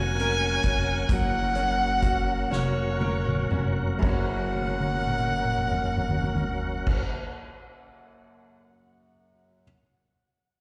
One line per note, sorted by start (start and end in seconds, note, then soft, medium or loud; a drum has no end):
0.00 0.60 F1 medium
0.00 1.06 F#3 medium
0.00 3.98 F#3 medium
0.00 1.09 A#3 medium
0.00 0.19 C#4 medium
0.00 0.66 C#4 medium
0.00 3.98 C#4 medium
0.00 0.64 F#4 medium
0.00 1.06 F#4 medium
0.00 3.98 A#4 medium
0.00 3.99 F#5 medium
0.00 1.13 G#5 loud
0.19 2.02 C#4 medium
0.19 1.99 A#4 medium
0.19 closed hi-hat soft
0.63 1.06 F1 medium
0.63 1.54 C#4 medium
0.63 2.51 F#4 medium
0.63 kick medium
0.63 closed hi-hat medium
1.09 2.47 F#1 loud
1.09 3.99 F#3 medium
1.09 1.55 A#3 medium
1.09 2.54 F#5 loud
1.09 kick loud
1.09 closed hi-hat loud
1.55 3.98 A#3 medium
1.55 2.49 C#4 medium
1.55 closed hi-hat soft
2.02 3.00 C#4 medium
2.02 3.99 F#4 medium
2.02 kick medium
2.02 closed hi-hat medium
2.51 3.47 F1 medium
2.51 3.50 C#4 medium
2.51 3.50 F#4 medium
2.51 3.64 C#5 medium
2.51 snare medium
3.00 4.04 C#4 medium
3.00 4.00 A#4 medium
3.00 high tom medium
3.26 mid tom medium
3.50 3.99 F1 medium
3.50 4.01 C#4 soft
3.50 4.09 F#4 medium
3.50 mid tom medium
3.99 7.03 F#1 medium
3.99 7.01 F#2 soft
3.99 7.02 C#3 soft
3.99 7.03 F#3 medium
3.99 7.49 A#3 medium
3.99 7.03 A#3 soft
3.99 7.03 C#4 medium
3.99 7.03 A#4 medium
3.99 7.03 F#5 medium
3.99 kick loud
3.99 crash medium
4.03 7.04 C#4 medium
4.03 7.54 C#4 medium
4.03 7.04 F#4 soft
4.03 7.05 C#5 medium
4.03 7.04 F#5 medium
4.09 7.59 F#4 medium
4.55 high tom soft
4.67 high tom medium
4.80 high tom medium
4.94 high tom medium
5.07 mid tom medium
5.19 mid tom medium
5.32 mid tom medium
5.45 mid tom medium
5.58 mid tom medium
5.71 mid tom medium
5.84 mid tom medium
5.97 mid tom medium
6.09 floor tom medium
6.22 floor tom medium
6.35 floor tom medium
6.87 kick loud
6.87 crash loud